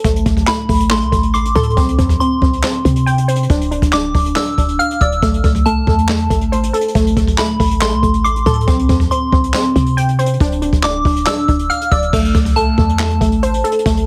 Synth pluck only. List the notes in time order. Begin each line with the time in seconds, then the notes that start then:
Already playing: A4 C5
0.05 A3
0.26 A3
0.48 A3
0.69 A3
0.91 A3
1.12 A3
1.34 C6
1.55 A4
1.77 C4
1.98 C4
2.21 C4
2.42 C4
2.63 C4
2.85 C4
3.06 G5
3.28 C5
3.50 D4
3.71 D4
3.93 D4
4.15 D4
4.36 D4
4.58 D4
4.79 F5
5.01 D5
5.23 A3
5.44 A3
5.66 A3
5.88 A3
6.09 A3
6.30 A3
6.52 C5
6.73 A4
6.95 A3
7.17 A3
7.38 A3
7.60 A3
7.81 A3
8.02 A3
8.24 C6
8.46 A4
8.67 C4
8.89 C4
9.11 C4
9.33 C4
9.54 C4
9.76 C4
9.97 G5
10.19 C5
10.41 D4
10.62 D4
10.84 D4
11.05 D4
11.26 D4
11.49 D4
11.70 F5
11.92 D5
12.13 A3
12.35 A3
12.56 A3
12.78 A3
13.00 A3
13.21 A3
13.43 C5
13.64 A4
13.86 A3